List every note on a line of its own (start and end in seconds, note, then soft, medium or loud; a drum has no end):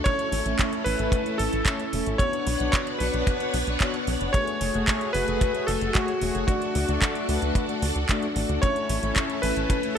0.00 2.16 A4 medium
0.04 0.42 A3 medium
0.04 0.42 C#4 medium
0.04 2.18 C#4 medium
0.04 0.42 E4 medium
0.04 2.18 E4 medium
0.04 0.88 C#5 loud
0.04 0.42 C#5 medium
0.04 kick loud
0.04 closed hi-hat loud
0.19 closed hi-hat soft
0.32 0.42 A1 medium
0.32 open hi-hat loud
0.46 0.55 A1 medium
0.46 0.83 A3 loud
0.46 0.83 C#4 medium
0.46 0.83 E4 medium
0.46 0.83 C#5 loud
0.46 closed hi-hat soft
0.59 kick loud
0.59 clap loud
0.59 closed hi-hat loud
0.73 closed hi-hat soft
0.84 0.96 A1 loud
0.84 1.23 A3 medium
0.84 1.23 C#4 medium
0.84 1.23 E4 medium
0.84 1.35 B4 loud
0.84 1.23 B4 loud
0.84 open hi-hat medium
0.99 1.09 A1 medium
0.99 closed hi-hat soft
1.12 kick loud
1.12 closed hi-hat medium
1.26 1.43 A3 medium
1.26 1.43 C#4 medium
1.26 1.43 E4 medium
1.26 1.43 C#5 loud
1.26 closed hi-hat soft
1.38 1.49 A1 medium
1.38 2.22 A4 loud
1.38 open hi-hat loud
1.53 1.63 A1 medium
1.53 closed hi-hat soft
1.65 1.83 A3 loud
1.65 1.83 C#4 medium
1.65 1.83 E4 medium
1.65 1.83 C#5 loud
1.65 kick loud
1.65 clap loud
1.65 closed hi-hat loud
1.80 closed hi-hat soft
1.93 2.03 E1 medium
1.93 2.17 A3 medium
1.93 2.17 C#4 medium
1.93 2.17 E4 medium
1.93 2.17 C#5 medium
1.93 open hi-hat medium
2.06 2.16 A1 medium
2.06 closed hi-hat soft
2.18 2.57 B3 medium
2.18 4.32 B3 medium
2.18 2.57 D4 medium
2.18 4.32 D4 medium
2.18 2.57 F#4 medium
2.18 4.32 B4 medium
2.18 2.70 C#5 loud
2.18 2.57 C#5 medium
2.18 4.32 C#5 medium
2.18 4.32 F#5 medium
2.18 kick loud
2.18 closed hi-hat medium
2.33 closed hi-hat soft
2.47 2.56 B1 loud
2.47 open hi-hat loud
2.60 2.70 B1 medium
2.60 2.97 B3 medium
2.60 2.97 D4 medium
2.60 2.97 F#4 medium
2.60 2.97 C#5 loud
2.60 closed hi-hat soft
2.72 2.78 C#5 loud
2.72 kick loud
2.72 clap loud
2.72 closed hi-hat medium
2.87 closed hi-hat soft
2.99 3.10 B1 loud
2.99 3.37 B3 loud
2.99 3.37 D4 medium
2.99 3.37 F#4 medium
2.99 4.03 B4 medium
2.99 3.37 B4 loud
2.99 open hi-hat medium
3.14 3.23 B1 medium
3.14 closed hi-hat soft
3.27 kick loud
3.27 closed hi-hat medium
3.40 3.58 B3 medium
3.40 3.58 D4 medium
3.40 3.58 F#4 medium
3.40 3.58 C#5 medium
3.40 closed hi-hat soft
3.54 3.63 B1 medium
3.54 open hi-hat loud
3.67 3.77 B1 medium
3.67 closed hi-hat soft
3.80 3.98 B3 loud
3.80 3.98 D4 medium
3.80 3.98 F#4 medium
3.80 3.98 C#5 loud
3.80 kick loud
3.80 clap loud
3.80 closed hi-hat loud
3.94 closed hi-hat soft
4.07 4.17 B1 loud
4.07 4.31 B3 medium
4.07 4.31 D4 medium
4.07 4.31 F#4 medium
4.07 4.31 C#5 medium
4.07 open hi-hat medium
4.21 4.31 F#1 medium
4.21 closed hi-hat soft
4.33 6.46 A3 medium
4.33 4.71 A3 medium
4.33 4.71 F#4 medium
4.33 8.59 F#4 medium
4.33 6.46 G#4 medium
4.33 4.71 G#4 medium
4.33 5.16 C#5 loud
4.33 4.71 C#5 medium
4.33 kick loud
4.33 closed hi-hat medium
4.47 closed hi-hat soft
4.61 4.71 F#1 medium
4.61 open hi-hat loud
4.74 4.84 F#1 medium
4.74 5.11 A3 loud
4.74 5.11 F#4 medium
4.74 5.11 G#4 medium
4.74 5.11 C#5 loud
4.74 closed hi-hat soft
4.88 kick loud
4.88 clap loud
4.88 closed hi-hat medium
5.01 closed hi-hat soft
5.13 5.24 F#1 loud
5.13 5.51 A3 medium
5.13 5.51 F#4 medium
5.13 5.51 G#4 medium
5.13 5.63 B4 loud
5.13 5.51 B4 loud
5.13 open hi-hat medium
5.28 5.38 F#1 medium
5.28 closed hi-hat soft
5.41 kick loud
5.41 closed hi-hat medium
5.55 5.72 A3 medium
5.55 5.72 F#4 medium
5.55 5.72 G#4 medium
5.55 5.72 C#5 medium
5.55 closed hi-hat soft
5.67 5.78 F#1 medium
5.67 5.95 A4 medium
5.67 open hi-hat loud
5.81 5.91 F#1 medium
5.81 closed hi-hat soft
5.94 6.12 A3 loud
5.94 6.44 F#4 medium
5.94 6.12 F#4 medium
5.94 6.12 G#4 medium
5.94 6.12 C#5 loud
5.94 kick loud
5.94 clap loud
5.94 closed hi-hat medium
6.08 closed hi-hat soft
6.21 6.31 E1 medium
6.21 6.45 A3 medium
6.21 6.45 F#4 medium
6.21 6.45 G#4 medium
6.21 6.45 C#5 medium
6.21 open hi-hat medium
6.35 6.45 F#1 medium
6.35 closed hi-hat soft
6.47 6.85 A3 medium
6.47 6.85 D4 medium
6.47 8.61 D4 medium
6.47 8.04 F#4 medium
6.47 6.85 F#4 medium
6.47 8.61 A4 medium
6.47 6.85 D5 medium
6.47 kick loud
6.47 closed hi-hat medium
6.62 closed hi-hat soft
6.75 6.85 D2 medium
6.75 open hi-hat loud
6.88 6.98 D2 medium
6.88 7.26 A3 loud
6.88 7.26 D4 medium
6.88 7.26 F#4 medium
6.88 7.26 D5 loud
6.88 closed hi-hat soft
7.02 kick medium
7.02 clap loud
7.02 closed hi-hat medium
7.15 closed hi-hat soft
7.29 7.38 D2 loud
7.29 7.66 A3 loud
7.29 7.66 D4 medium
7.29 7.66 F#4 medium
7.29 7.66 B4 loud
7.29 open hi-hat loud
7.42 7.52 D2 medium
7.42 closed hi-hat soft
7.55 kick loud
7.55 closed hi-hat medium
7.69 7.86 A3 medium
7.69 7.86 D4 medium
7.69 7.86 F#4 medium
7.69 7.86 D5 medium
7.69 closed hi-hat soft
7.82 7.92 D2 loud
7.82 open hi-hat loud
7.96 8.05 D2 medium
7.96 closed hi-hat soft
8.09 8.26 A3 loud
8.09 8.26 D4 medium
8.09 8.26 F#4 medium
8.09 8.26 D5 loud
8.09 kick loud
8.09 clap loud
8.09 closed hi-hat medium
8.23 closed hi-hat soft
8.36 8.46 A1 loud
8.36 8.59 A3 medium
8.36 8.59 D4 medium
8.36 8.59 F#4 medium
8.36 8.59 D5 medium
8.36 open hi-hat medium
8.49 8.59 D2 medium
8.49 closed hi-hat soft
8.62 9.00 A3 medium
8.62 9.00 C#4 medium
8.62 9.98 C#4 medium
8.62 9.00 E4 medium
8.62 9.98 E4 medium
8.62 9.98 A4 medium
8.62 9.45 C#5 loud
8.62 9.00 C#5 medium
8.62 kick loud
8.62 closed hi-hat medium
8.76 closed hi-hat soft
8.89 8.99 A1 medium
8.89 open hi-hat loud
9.03 9.13 A1 medium
9.03 9.40 A3 medium
9.03 9.40 C#4 medium
9.03 9.40 E4 medium
9.03 9.40 C#5 loud
9.03 closed hi-hat soft
9.16 kick medium
9.16 clap loud
9.16 closed hi-hat medium
9.30 closed hi-hat soft
9.42 9.53 A1 loud
9.42 9.80 A3 medium
9.42 9.80 C#4 medium
9.42 9.80 E4 medium
9.42 9.98 B4 loud
9.42 9.80 B4 loud
9.42 open hi-hat loud
9.56 9.66 A1 medium
9.56 closed hi-hat soft
9.70 kick loud
9.70 closed hi-hat medium
9.83 9.98 A3 medium
9.83 9.98 C#4 medium
9.83 9.98 E4 medium
9.83 9.98 C#5 medium
9.83 closed hi-hat soft